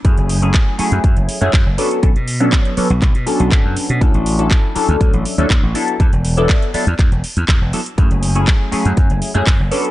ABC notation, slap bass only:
X:1
M:4/4
L:1/16
Q:1/4=121
K:F#m
V:1 name="Slap bass" clef=bass
F,, F,,,3 z3 F,, F,, F,,, z F,, F,, F,,, z2 | B,,, B,,3 z3 B,,, z B,, z B,,, z F,, z B,, | D,, A,,,3 z3 D,, D,, A,,, z D,, D,, A,,, z2 | E,, E,,,3 z3 E,, E,, E,,, z E,, E,, E,,, z2 |
F,, F,,,3 z3 F,, F,, F,,, z F,, F,, F,,, z2 |]